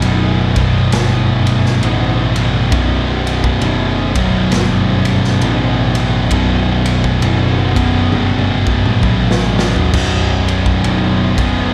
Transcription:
Already playing: B1 F#2 B2
0.02 F#1 B1 F#2 B2, ride
0.56 B1 F#2 B2, kick, ride
0.92 G1 B1 F#2 B2, snare, ride
1.47 ride
1.66 snare
1.81 A1 B1 F#2 B2, ride
2.36 B1 F#2 B2, ride
2.72 B0 B1 F#2 B2, kick, ride
3.27 ride
3.44 kick
3.61 F#1 B1 F#2 B2, ride
4.15 B1 F#2 B2, kick, ride
4.52 G1 B1 F#2 B2, snare, ride
5.05 ride
5.24 snare
5.41 A1 B1 F#2 B2, ride
5.95 B1 F#2 B2, ride
6.31 B0 B1 F#2 B2, kick, ride
6.86 ride
7.04 kick
7.21 F#1 B1 F#2 B2, ride
7.74 B1 F#2 B2, kick, ride
7.78 B2
8.12 G1 B1 F#2 B2, high tom
8.39 high tom
8.67 kick
8.86 mid tom
9.03 A1 B1 F#2 B2, kick
9.31 snare
9.56 B1 F#2 B2, snare
9.76 floor tom
9.93 B0 B1 F#2 B2, kick, crash
10.48 ride
10.66 kick
10.83 F#1 B1 F#2 B2, ride
11.37 B1 F#2 B2, kick, ride

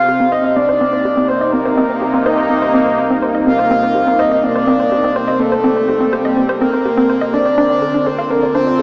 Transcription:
Already playing: C2 C3 C4 G4 C5 F5
0.06 A#3 G4
0.16 D#4
0.20 C4
0.32 C5 D#5
0.44 D#5
0.56 C4 D5
0.69 C5
0.81 C4
0.93 C5
1.05 G4
1.17 C4
1.28 C5
1.41 D#5
1.53 C4 A#4
1.65 C5
1.77 C4
1.90 C5
2.02 G4
2.14 C4
2.26 C5 D#5
2.38 D#5
2.50 C4
2.62 C5
2.74 C4
2.86 C5
2.98 G4
3.10 C4
3.22 C5
3.35 D#5
3.47 C4 F5
3.59 C5
3.71 C4
3.83 C5
3.95 G4
4.07 C4
4.19 C5 D#5
4.31 D#5
4.36 D#5
4.43 C4 D5
4.55 C5
4.67 C4
4.80 C5
4.92 G4
5.04 C4
5.16 C5
5.28 D#5
5.40 C4 A4
5.52 C5
5.64 C4
5.76 C5
5.89 G4
6.00 C4
6.12 G4 C5
6.25 D#5
6.37 C4
6.49 C5
6.61 C4 A#4
6.74 C5
6.85 G4
6.97 C4
7.10 C5
7.21 D#5
7.33 D2 D3 D4 D5
7.46 D5
7.58 D4
7.70 D5
7.82 A4
7.90 A4
7.94 D4 F4
8.06 A4 C5
8.18 F5
8.30 D4 A#4
8.43 D5
8.55 D4 C5
8.67 D5
8.79 A4

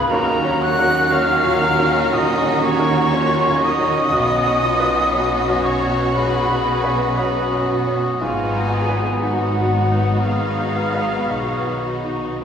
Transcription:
Already playing: G#2 C#3 B3 F4 B4 B5
0.09 D#2 D#3 F#3 A#3 C#4 F#4 A#4 C#5 A#5
0.35 C#4
0.45 C#4
0.60 A#3 F#5 F#6
0.79 A#4
0.85 C#4
1.10 A#3 C#4 C#5 F5 F6
1.34 C#4
1.45 A#2
1.60 A#3 A#4
1.79 C#4
1.85 C#4
2.11 A#2 A#3 A#4 D#5 D#6
2.37 C#4
2.45 C#4
2.63 A#3 C#5 C#6
2.79 A#4
2.89 C#4
3.13 A#3 C#4 F4 C#5
3.40 C#4
3.46 A#2
3.63 A#3 D#4 D#5 D#6
3.80 C#4
3.91 C#4
4.12 B1 B2 F#3 B3 C#4 F#4
4.39 C#4
4.46 C#4
4.64 B3 F4
4.80 B4
4.91 C#4
5.14 B3 C#4 F#4 B4
5.40 C#4
5.48 F#2
5.65 B3 C#5 C#6
5.82 C#4
5.91 C#4
6.15 F#2 B3 G#4 B4 B5
6.42 C#4
6.49 C#4
6.67 B3
6.84 B4
6.91 C#4
7.17 B3 C#4 F#4 B4 D#5 B5
7.44 C#4
7.53 F#2
7.68 B3 F#4
7.87 C#4
7.95 C#4
8.20 G#1 G#2 F#3 B3 D#4 F4 F#4 G#4 F5 G#5
8.55 D#4
8.71 D#5
8.89 B4
9.22 B3 D#4 F#4 F#5
9.56 D#3
9.91 D#4
10.24 D#3 G#4 D#5 F5
10.59 D#4
10.94 B4
11.29 B1 B2 D#4 G#4 C#5
11.67 D#3
11.85 D#4 F#4 D#5
12.04 D#4

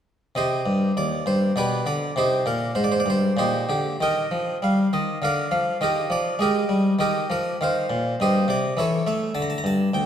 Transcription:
0.35 C3 G4 C5 D#5
0.66 G2
0.97 D#2 D5
1.26 G2 C5
1.56 B2 G4 B4 D5
1.86 D3 D5
2.16 C3 D#4 G4 C5
2.46 A#2 A#4
2.75 G#2 C5
2.84 D5
2.92 C5
3.00 D5
3.06 G2
3.10 C5
3.37 A#2 D#4 G4 C5
3.69 D3 G4
4.00 D#3 A#4 D#5 G5
4.31 F3
4.62 G3 F5
4.93 D#3 D#5
5.22 D3 A#4 D5 F5
5.51 F3 F5
5.81 D#3 G4 A#4 D#5
6.10 F3 D5
6.39 G#3 G4 A#4 D#5
6.69 G3
6.99 D#3 G4 A#4 D#5
7.30 F3 A#4
7.61 D#3 C5 F5
7.90 A#2
8.20 G2 G4 C5 D#5
8.48 C3 D5
8.77 E3 A4 C#5 E5
9.07 A3 E5
9.35 D3 A5
9.42 A#5
9.50 A5
9.58 A#5
9.64 G2 A5
9.94 D2 G5

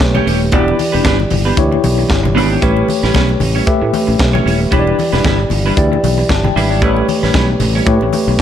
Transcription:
Already playing: A3 G4 B4 C#5
0.00 B1, muted clean electric guitar stroke, kick, snare, closed hi-hat, muted conga
0.15 A3 C#4 G4 C#5, muted conga, high conga, low conga
0.26 D#1 A3 C#4 G4 C#5, open hi-hat
0.41 muted clean electric guitar stroke
0.52 E1 E3 B3 D4 E4 F#4 G4 B4 D5, kick, closed hi-hat, muted conga
0.59 G4
0.68 muted conga
0.78 muted clean electric guitar stroke, open hi-hat, high conga
0.92 E1 B3 D4 G4 B4
1.03 G1 B3 D4 G4 B4, kick, snare, closed hi-hat, high conga
1.19 muted clean electric guitar stroke, muted conga
1.30 G1, muted clean electric guitar stroke, open hi-hat, high conga, low conga
1.45 B3 D4 G4 B4
1.56 D2 E3 E4 G4 C#5, muted clean electric guitar stroke, kick, closed hi-hat, muted conga
1.72 muted clean electric guitar stroke, muted conga
1.84 B1, open hi-hat, high conga
1.98 muted clean electric guitar stroke
2.09 G1, muted clean electric guitar stroke, kick, snare, muted conga
2.23 muted clean electric guitar stroke, high conga, low conga
2.35 G#1 B3 D4 G4 B4, open hi-hat
2.50 B3 D4 G4 C#5
2.61 A1 G3 A3 C#4 E4 G4 B4 C#5, kick, closed hi-hat
2.76 muted conga
2.88 muted clean electric guitar stroke, open hi-hat, high conga
3.03 A1 G3 C#4 E4 B4, snare
3.14 B1 G3 C#4 E4 B4, kick, snare, closed hi-hat, muted conga, high conga
3.29 muted clean electric guitar stroke, muted conga
3.40 A1, muted clean electric guitar stroke, open hi-hat, high conga, low conga
3.55 G3 C#4 E4 C#5
3.66 A3 G4 B4 E5, muted clean electric guitar stroke, muted fingered electric bass stroke, kick, closed hi-hat
3.82 A2, muted clean electric guitar stroke
3.93 open hi-hat, high conga
4.07 A1, muted clean electric guitar stroke
4.19 B1, muted clean electric guitar stroke, kick, snare, closed hi-hat
4.33 G3 C#4 E4 C#5, muted conga, high conga, low conga
4.46 D#1 G3 C#4 E4 C#5, open hi-hat
4.60 muted clean electric guitar stroke
4.71 E1 E3 G3 D4 E4 G4 B4 C#5, kick, closed hi-hat, muted conga
4.79 D5
4.87 muted conga
4.98 muted clean electric guitar stroke, open hi-hat, high conga
5.12 E1 G3 D4 E4 B4, snare
5.24 G1 G3 D4 E4 B4, kick, snare, closed hi-hat, muted conga, high conga
5.39 muted clean electric guitar stroke
5.50 G1, muted clean electric guitar stroke, open hi-hat, high conga, low conga
5.66 G3 D4 E4 B4
5.76 D2 E3 E4 G4 D5, muted clean electric guitar stroke, kick, closed hi-hat
5.92 muted clean electric guitar stroke, muted conga
6.03 B1, open hi-hat, high conga
6.18 muted clean electric guitar stroke
6.29 G1 A5, muted clean electric guitar stroke, kick, snare, closed hi-hat, muted conga
6.44 G5, muted clean electric guitar stroke, high conga, low conga
6.56 G#1 G3 D4 E4 B4 E5, open hi-hat
6.71 G3 D4 E4 C#5 D5
6.81 A1 G3 A3 C#4 E4 G4 B4 C#5, kick, closed hi-hat, muted conga
6.96 muted conga
7.07 muted clean electric guitar stroke, open hi-hat, high conga
7.23 A1 G3 C#4 E4 B4, snare
7.34 B1 G3 C#4 E4 B4, kick, snare, closed hi-hat, high conga
7.49 muted clean electric guitar stroke
7.60 A1, muted clean electric guitar stroke, open hi-hat, high conga, low conga
7.75 G3 C#4 E4 C#5
7.85 A2 A3 G4 B4 C#5, muted clean electric guitar stroke, kick, muted conga
8.01 A1, muted clean electric guitar stroke, muted conga
8.13 open hi-hat, high conga
8.28 B1, muted clean electric guitar stroke

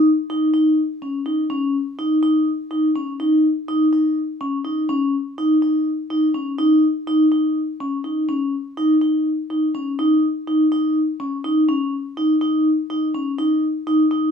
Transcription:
0.30 D#4
0.54 D#4
1.02 C#4
1.26 D#4
1.50 C#4
1.99 D#4
2.23 D#4
2.71 D#4
2.96 C#4
3.20 D#4
3.68 D#4
3.93 D#4
4.41 C#4
4.65 D#4
4.89 C#4
5.38 D#4
5.62 D#4
6.10 D#4
6.35 C#4
6.58 D#4
7.07 D#4
7.32 D#4
7.81 C#4
8.04 D#4
8.29 C#4
8.77 D#4
9.01 D#4
9.50 D#4
9.75 C#4
9.99 D#4
10.48 D#4
10.72 D#4
11.20 C#4
11.44 D#4
11.69 C#4
12.17 D#4
12.41 D#4
12.90 D#4
13.14 C#4
13.38 D#4
13.87 D#4
14.11 D#4

